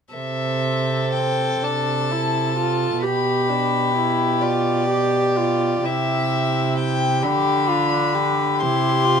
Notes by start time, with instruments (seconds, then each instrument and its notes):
0.13 cello C3, viola C4, violin A4 E5
1.13 violin G5
1.62 cello C3, viola D4, violin A5
2.11 viola E4
2.58 viola F4
3.03 cello B2, viola G4, violin G4 B5
3.50 viola D4
3.97 viola E4
4.42 viola F4, violin D5
4.89 viola G4
5.37 viola F4
5.83 cello C3, viola E4, violin G4 E5
6.78 violin G5
7.22 cello D3, viola D4, violin G4 B5
7.69 violin F4
8.14 violin G4
8.61 cello C3, viola E4, violin C6
9.06 viola F4